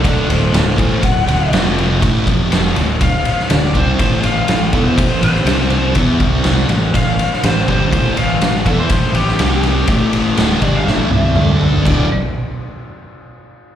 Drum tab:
CC |----------------|----------------|----------------|----------------|
RD |x-x-x-x-x-x-x-x-|x-x-x-x-x-x-x-x-|x-x-x-x-x-x-x-x-|x-x-x-x-x-x-x-x-|
SD |----o-------o---|----o------oo---|----o------oo---|----o------oo---|
T1 |----------------|----------------|----------------|----------------|
T2 |----------------|----------------|----------------|----------------|
FT |----------------|----------------|----------------|----------------|
BD |o-----o-o-------|o-o-----o-----o-|o-----o-o-------|o-o-----o-----o-|

CC |----------------|----------------|x---------------|
RD |x-x-x-x-x-x-x-x-|x-x-x-x---------|----------------|
SD |----o------oo---|----o---o-------|----------------|
T1 |----------------|----------oo----|----------------|
T2 |----------------|------------o---|----------------|
FT |----------------|--------------oo|----------------|
BD |o-----o-o-------|o-----o---------|o---------------|